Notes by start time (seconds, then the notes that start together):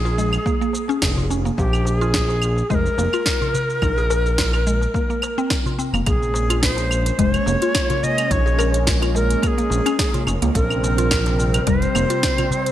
Already playing: A#1 G#4
0.05 F4, darbuka tek, shaker
0.18 G#3, shaker
0.32 darbuka ka, claves, shaker
0.46 A#3, kick, shaker
0.61 A#3, shaker
0.73 darbuka ka, darbuka tek, shaker
0.88 C#4, darbuka ka, shaker
1.02 F1, kick, snare, claves, shaker
1.17 F4, darbuka dum, shaker
1.30 C#4, shaker
1.44 A#3, darbuka ka, shaker
1.58 A#1 A#3 G4, kick, shaker
1.73 claves, shaker
1.85 G4, darbuka tek, shaker
1.99 F4 G#4, shaker
2.13 kick, snare, darbuka ka, shaker
2.29 darbuka tek, shaker
2.42 claves, shaker
2.57 darbuka ka, darbuka tek, shaker
2.70 F1 G#3 C5, kick, shaker
2.75 A#4
2.86 shaker
2.98 F1 A#3, darbuka ka, darbuka tek, shaker
3.13 F4, claves, shaker
3.26 kick, snare, shaker
3.42 F4, darbuka dum, shaker
3.53 darbuka ka, darbuka dum, shaker
3.70 shaker
3.82 A#1 D#4, kick, claves, shaker
3.98 G#4, shaker
4.10 A#4, darbuka tek, shaker
4.26 shaker
4.38 F4, kick, snare, darbuka ka, shaker
4.53 F4, darbuka tek, claves, shaker
4.67 G#3, shaker
4.81 darbuka ka, darbuka tek, shaker
4.94 A#3, kick, darbuka tek, shaker
5.10 A#3, shaker
5.22 darbuka ka, darbuka tek, claves, shaker
5.38 C4, darbuka ka, shaker
5.50 kick, snare, shaker
5.66 F4, darbuka dum, shaker
5.79 C4, shaker
5.93 F1 A#3, darbuka ka, darbuka dum, claves, shaker
6.06 A#1 G#3 A#3 C#4 G#4, kick, closed hi-hat, claves, shaker
6.23 shaker
6.34 darbuka tek, shaker
6.50 F4, closed hi-hat, darbuka ka, claves, shaker
6.62 C5, kick, snare, closed hi-hat, shaker
6.77 closed hi-hat, darbuka tek, shaker
6.90 darbuka ka, claves, shaker
7.06 closed hi-hat, darbuka tek, shaker
7.19 F1 G#3 C5, kick, closed hi-hat, shaker
7.34 C#5, closed hi-hat, claves, shaker
7.46 F1 A#3, darbuka tek, shaker
7.62 F4, closed hi-hat, shaker
7.75 kick, snare, closed hi-hat, claves, shaker
7.90 F4, closed hi-hat, darbuka dum, shaker
8.03 D#5, darbuka dum, shaker
8.18 closed hi-hat, darbuka ka, claves, shaker
8.31 A#1 D#4 C#5, kick, closed hi-hat, shaker
8.46 G#4, shaker
8.59 A#4, darbuka tek, claves, shaker
8.74 closed hi-hat, darbuka ka, shaker
8.87 F4, kick, snare, closed hi-hat, shaker
9.02 F4, closed hi-hat, darbuka tek, claves, shaker
9.15 G#3 A#4, darbuka ka, shaker
9.30 closed hi-hat, shaker
9.43 A#3 A#4, kick, closed hi-hat, claves, shaker
9.47 G#4
9.58 A#3, closed hi-hat, shaker
9.70 A#1, darbuka tek, shaker
9.86 C#4, closed hi-hat, claves, shaker
9.99 kick, snare, closed hi-hat, shaker
10.14 F4, closed hi-hat, darbuka dum, shaker
10.27 F1 C#4, darbuka ka, claves, shaker
10.42 C#2 A#3, closed hi-hat, darbuka ka, shaker
10.55 A#1 C3 G3 A#3 C4 A#4, kick, closed hi-hat, shaker
10.70 claves, shaker
10.84 darbuka tek, shaker
10.98 F4, closed hi-hat, darbuka ka, shaker
11.11 kick, snare, closed hi-hat, claves, shaker
11.26 closed hi-hat, darbuka tek, shaker
11.39 darbuka ka, shaker
11.54 closed hi-hat, darbuka tek, claves, shaker
11.67 F1 G3 C5, kick, closed hi-hat, shaker
11.82 closed hi-hat, shaker
11.95 F1 A#3, darbuka tek, claves, shaker
12.10 F4, closed hi-hat, shaker
12.23 kick, snare, closed hi-hat, shaker
12.38 F4, closed hi-hat, darbuka dum, claves, shaker
12.51 darbuka dum, shaker
12.65 closed hi-hat, darbuka ka, shaker